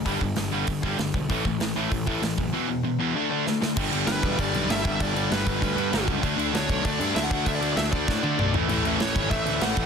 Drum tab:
CC |--------|--------|--------|xxxxxxxx|
HH |o-o-o-o-|o-o-o-o-|--------|--------|
SD |--o---o-|--o---o-|------oo|--o---o-|
T1 |--------|--------|--------|--------|
T2 |--------|--------|--------|--------|
FT |--------|--------|--------|--------|
BD |oo--oo-o|oo--oo-o|--------|o--oo--o|

CC |xxxxxxxx|xxxxxxxx|xxxx----|xxxxxxxx|
HH |--------|--------|--------|--------|
SD |--o---o-|--o---o-|--o-o---|--o---o-|
T1 |--------|--------|-----o--|--------|
T2 |--------|--------|------o-|--------|
FT |--------|--------|-------o|--------|
BD |o--oo--o|o--oo--o|o--oo---|---oo--o|